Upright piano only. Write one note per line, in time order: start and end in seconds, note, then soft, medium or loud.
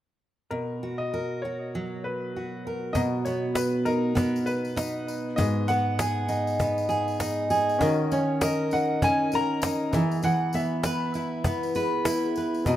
0.51 1.01 A#4 medium
0.98 1.39 D#5 medium
1.42 2.05 C#5 medium
2.04 2.61 B4 medium
2.93 3.00 D#5 medium
3.25 3.56 C#5 medium
3.55 3.87 B4 medium
3.85 4.42 A#4 medium
4.46 5.40 B4 medium
5.36 5.68 D#5 medium
5.68 6.55 F#5 loud
8.13 8.43 C#5 medium
8.43 8.73 D#5 medium
8.73 9.00 F#5 medium
9.04 9.34 G#5 loud
9.35 10.20 A#5 loud
10.24 10.55 F#5 medium
10.55 11.11 E5 medium
12.67 12.77 D#5 medium